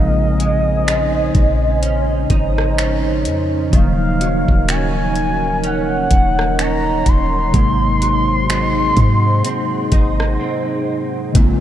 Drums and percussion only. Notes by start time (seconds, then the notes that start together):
0.40 closed hi-hat
0.88 finger snap, closed hi-hat
1.35 kick, closed hi-hat
1.83 closed hi-hat
2.30 kick, closed hi-hat
2.58 cross-stick
2.78 finger snap, closed hi-hat
3.25 closed hi-hat
3.73 kick, closed hi-hat
4.21 closed hi-hat
4.48 kick
4.69 finger snap, closed hi-hat
5.15 closed hi-hat
5.64 closed hi-hat
6.11 kick, closed hi-hat
6.39 cross-stick
6.59 finger snap, closed hi-hat
7.06 kick, closed hi-hat
7.54 kick, closed hi-hat
8.02 closed hi-hat
8.50 finger snap, closed hi-hat
8.97 kick, closed hi-hat
9.45 closed hi-hat
9.92 kick, closed hi-hat
10.20 cross-stick
11.35 kick, closed hi-hat